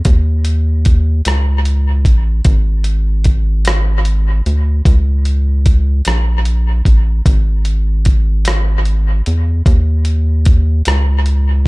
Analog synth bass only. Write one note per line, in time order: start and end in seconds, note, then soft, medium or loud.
0.06 1.22 D#2 loud
1.26 2.07 C#2 loud
2.06 2.41 A1 medium
2.46 4.42 G#1 loud
4.46 4.82 D2 medium
4.86 6.02 C#2 medium
6.07 6.82 A#1 loud
6.86 7.22 A1 medium
7.27 9.22 G#1 loud
9.27 9.62 E2 medium
9.67 10.82 D#2 loud
10.87 11.68 C#2 loud